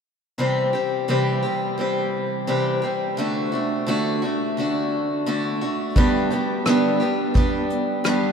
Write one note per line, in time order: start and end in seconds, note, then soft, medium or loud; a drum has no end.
0.38 0.73 C3 medium
0.38 0.73 E3 medium
0.38 0.74 G3 medium
0.38 0.73 C4 medium
0.38 0.72 G4 medium
0.73 1.08 G3 soft
0.73 1.09 C4 soft
0.73 1.08 G4 soft
1.08 1.43 C3 medium
1.08 1.43 E3 medium
1.08 1.44 G3 medium
1.08 1.43 C4 medium
1.08 1.41 G4 medium
1.43 1.77 G3 soft
1.43 1.79 C4 soft
1.43 1.78 G4 soft
1.78 2.47 E3 medium
1.78 2.47 G3 medium
1.78 2.48 C4 medium
1.78 2.48 G4 medium
2.47 2.82 C3 medium
2.47 2.83 E3 medium
2.47 2.83 G3 medium
2.47 2.82 C4 medium
2.47 2.81 G4 medium
2.82 3.18 G3 soft
2.82 3.18 C4 soft
2.82 3.17 G4 soft
3.17 3.52 D3 medium
3.17 3.53 A3 medium
3.17 3.52 D4 medium
3.17 3.51 F#4 medium
3.52 3.87 A3 soft
3.52 3.87 D4 soft
3.52 3.87 F#4 medium
3.87 4.22 D3 medium
3.87 4.22 A3 medium
3.87 4.22 D4 medium
3.87 4.21 F#4 medium
4.22 4.57 A3 soft
4.22 4.58 D4 soft
4.22 4.57 F#4 soft
4.57 5.25 D3 medium
4.57 5.26 A3 medium
4.57 5.26 D4 medium
4.57 5.27 F#4 medium
5.26 5.61 D3 medium
5.26 5.62 A3 medium
5.26 5.62 D4 medium
5.26 5.60 F#4 medium
5.61 5.97 A3 soft
5.61 5.96 D4 soft
5.61 5.96 F#4 soft
5.96 6.31 G2 medium
5.96 6.31 D3 medium
5.96 6.31 G3 medium
5.96 6.32 B3 medium
5.96 6.31 D4 medium
5.96 6.29 G4 medium
5.96 kick loud
5.96 closed hi-hat medium
6.30 6.65 G3 soft
6.30 6.66 B3 soft
6.30 6.66 D4 soft
6.30 6.65 G4 medium
6.30 closed hi-hat medium
6.66 7.00 G2 medium
6.66 7.01 D3 medium
6.66 7.01 G3 medium
6.66 7.01 B3 medium
6.66 7.00 D4 medium
6.66 6.99 G4 medium
6.66 cross-stick loud
6.66 closed hi-hat medium
7.00 7.33 G3 soft
7.00 7.34 B3 soft
7.00 7.35 D4 soft
7.00 7.35 G4 medium
7.34 8.05 G3 medium
7.34 8.04 B3 medium
7.34 8.05 D4 medium
7.34 8.06 G4 medium
7.34 kick medium
7.34 closed hi-hat medium
7.70 closed hi-hat medium
8.04 8.32 G2 medium
8.04 8.32 D3 medium
8.04 8.32 G3 medium
8.04 8.32 B3 medium
8.04 8.32 D4 medium
8.04 8.32 G4 medium
8.04 cross-stick medium
8.04 closed hi-hat medium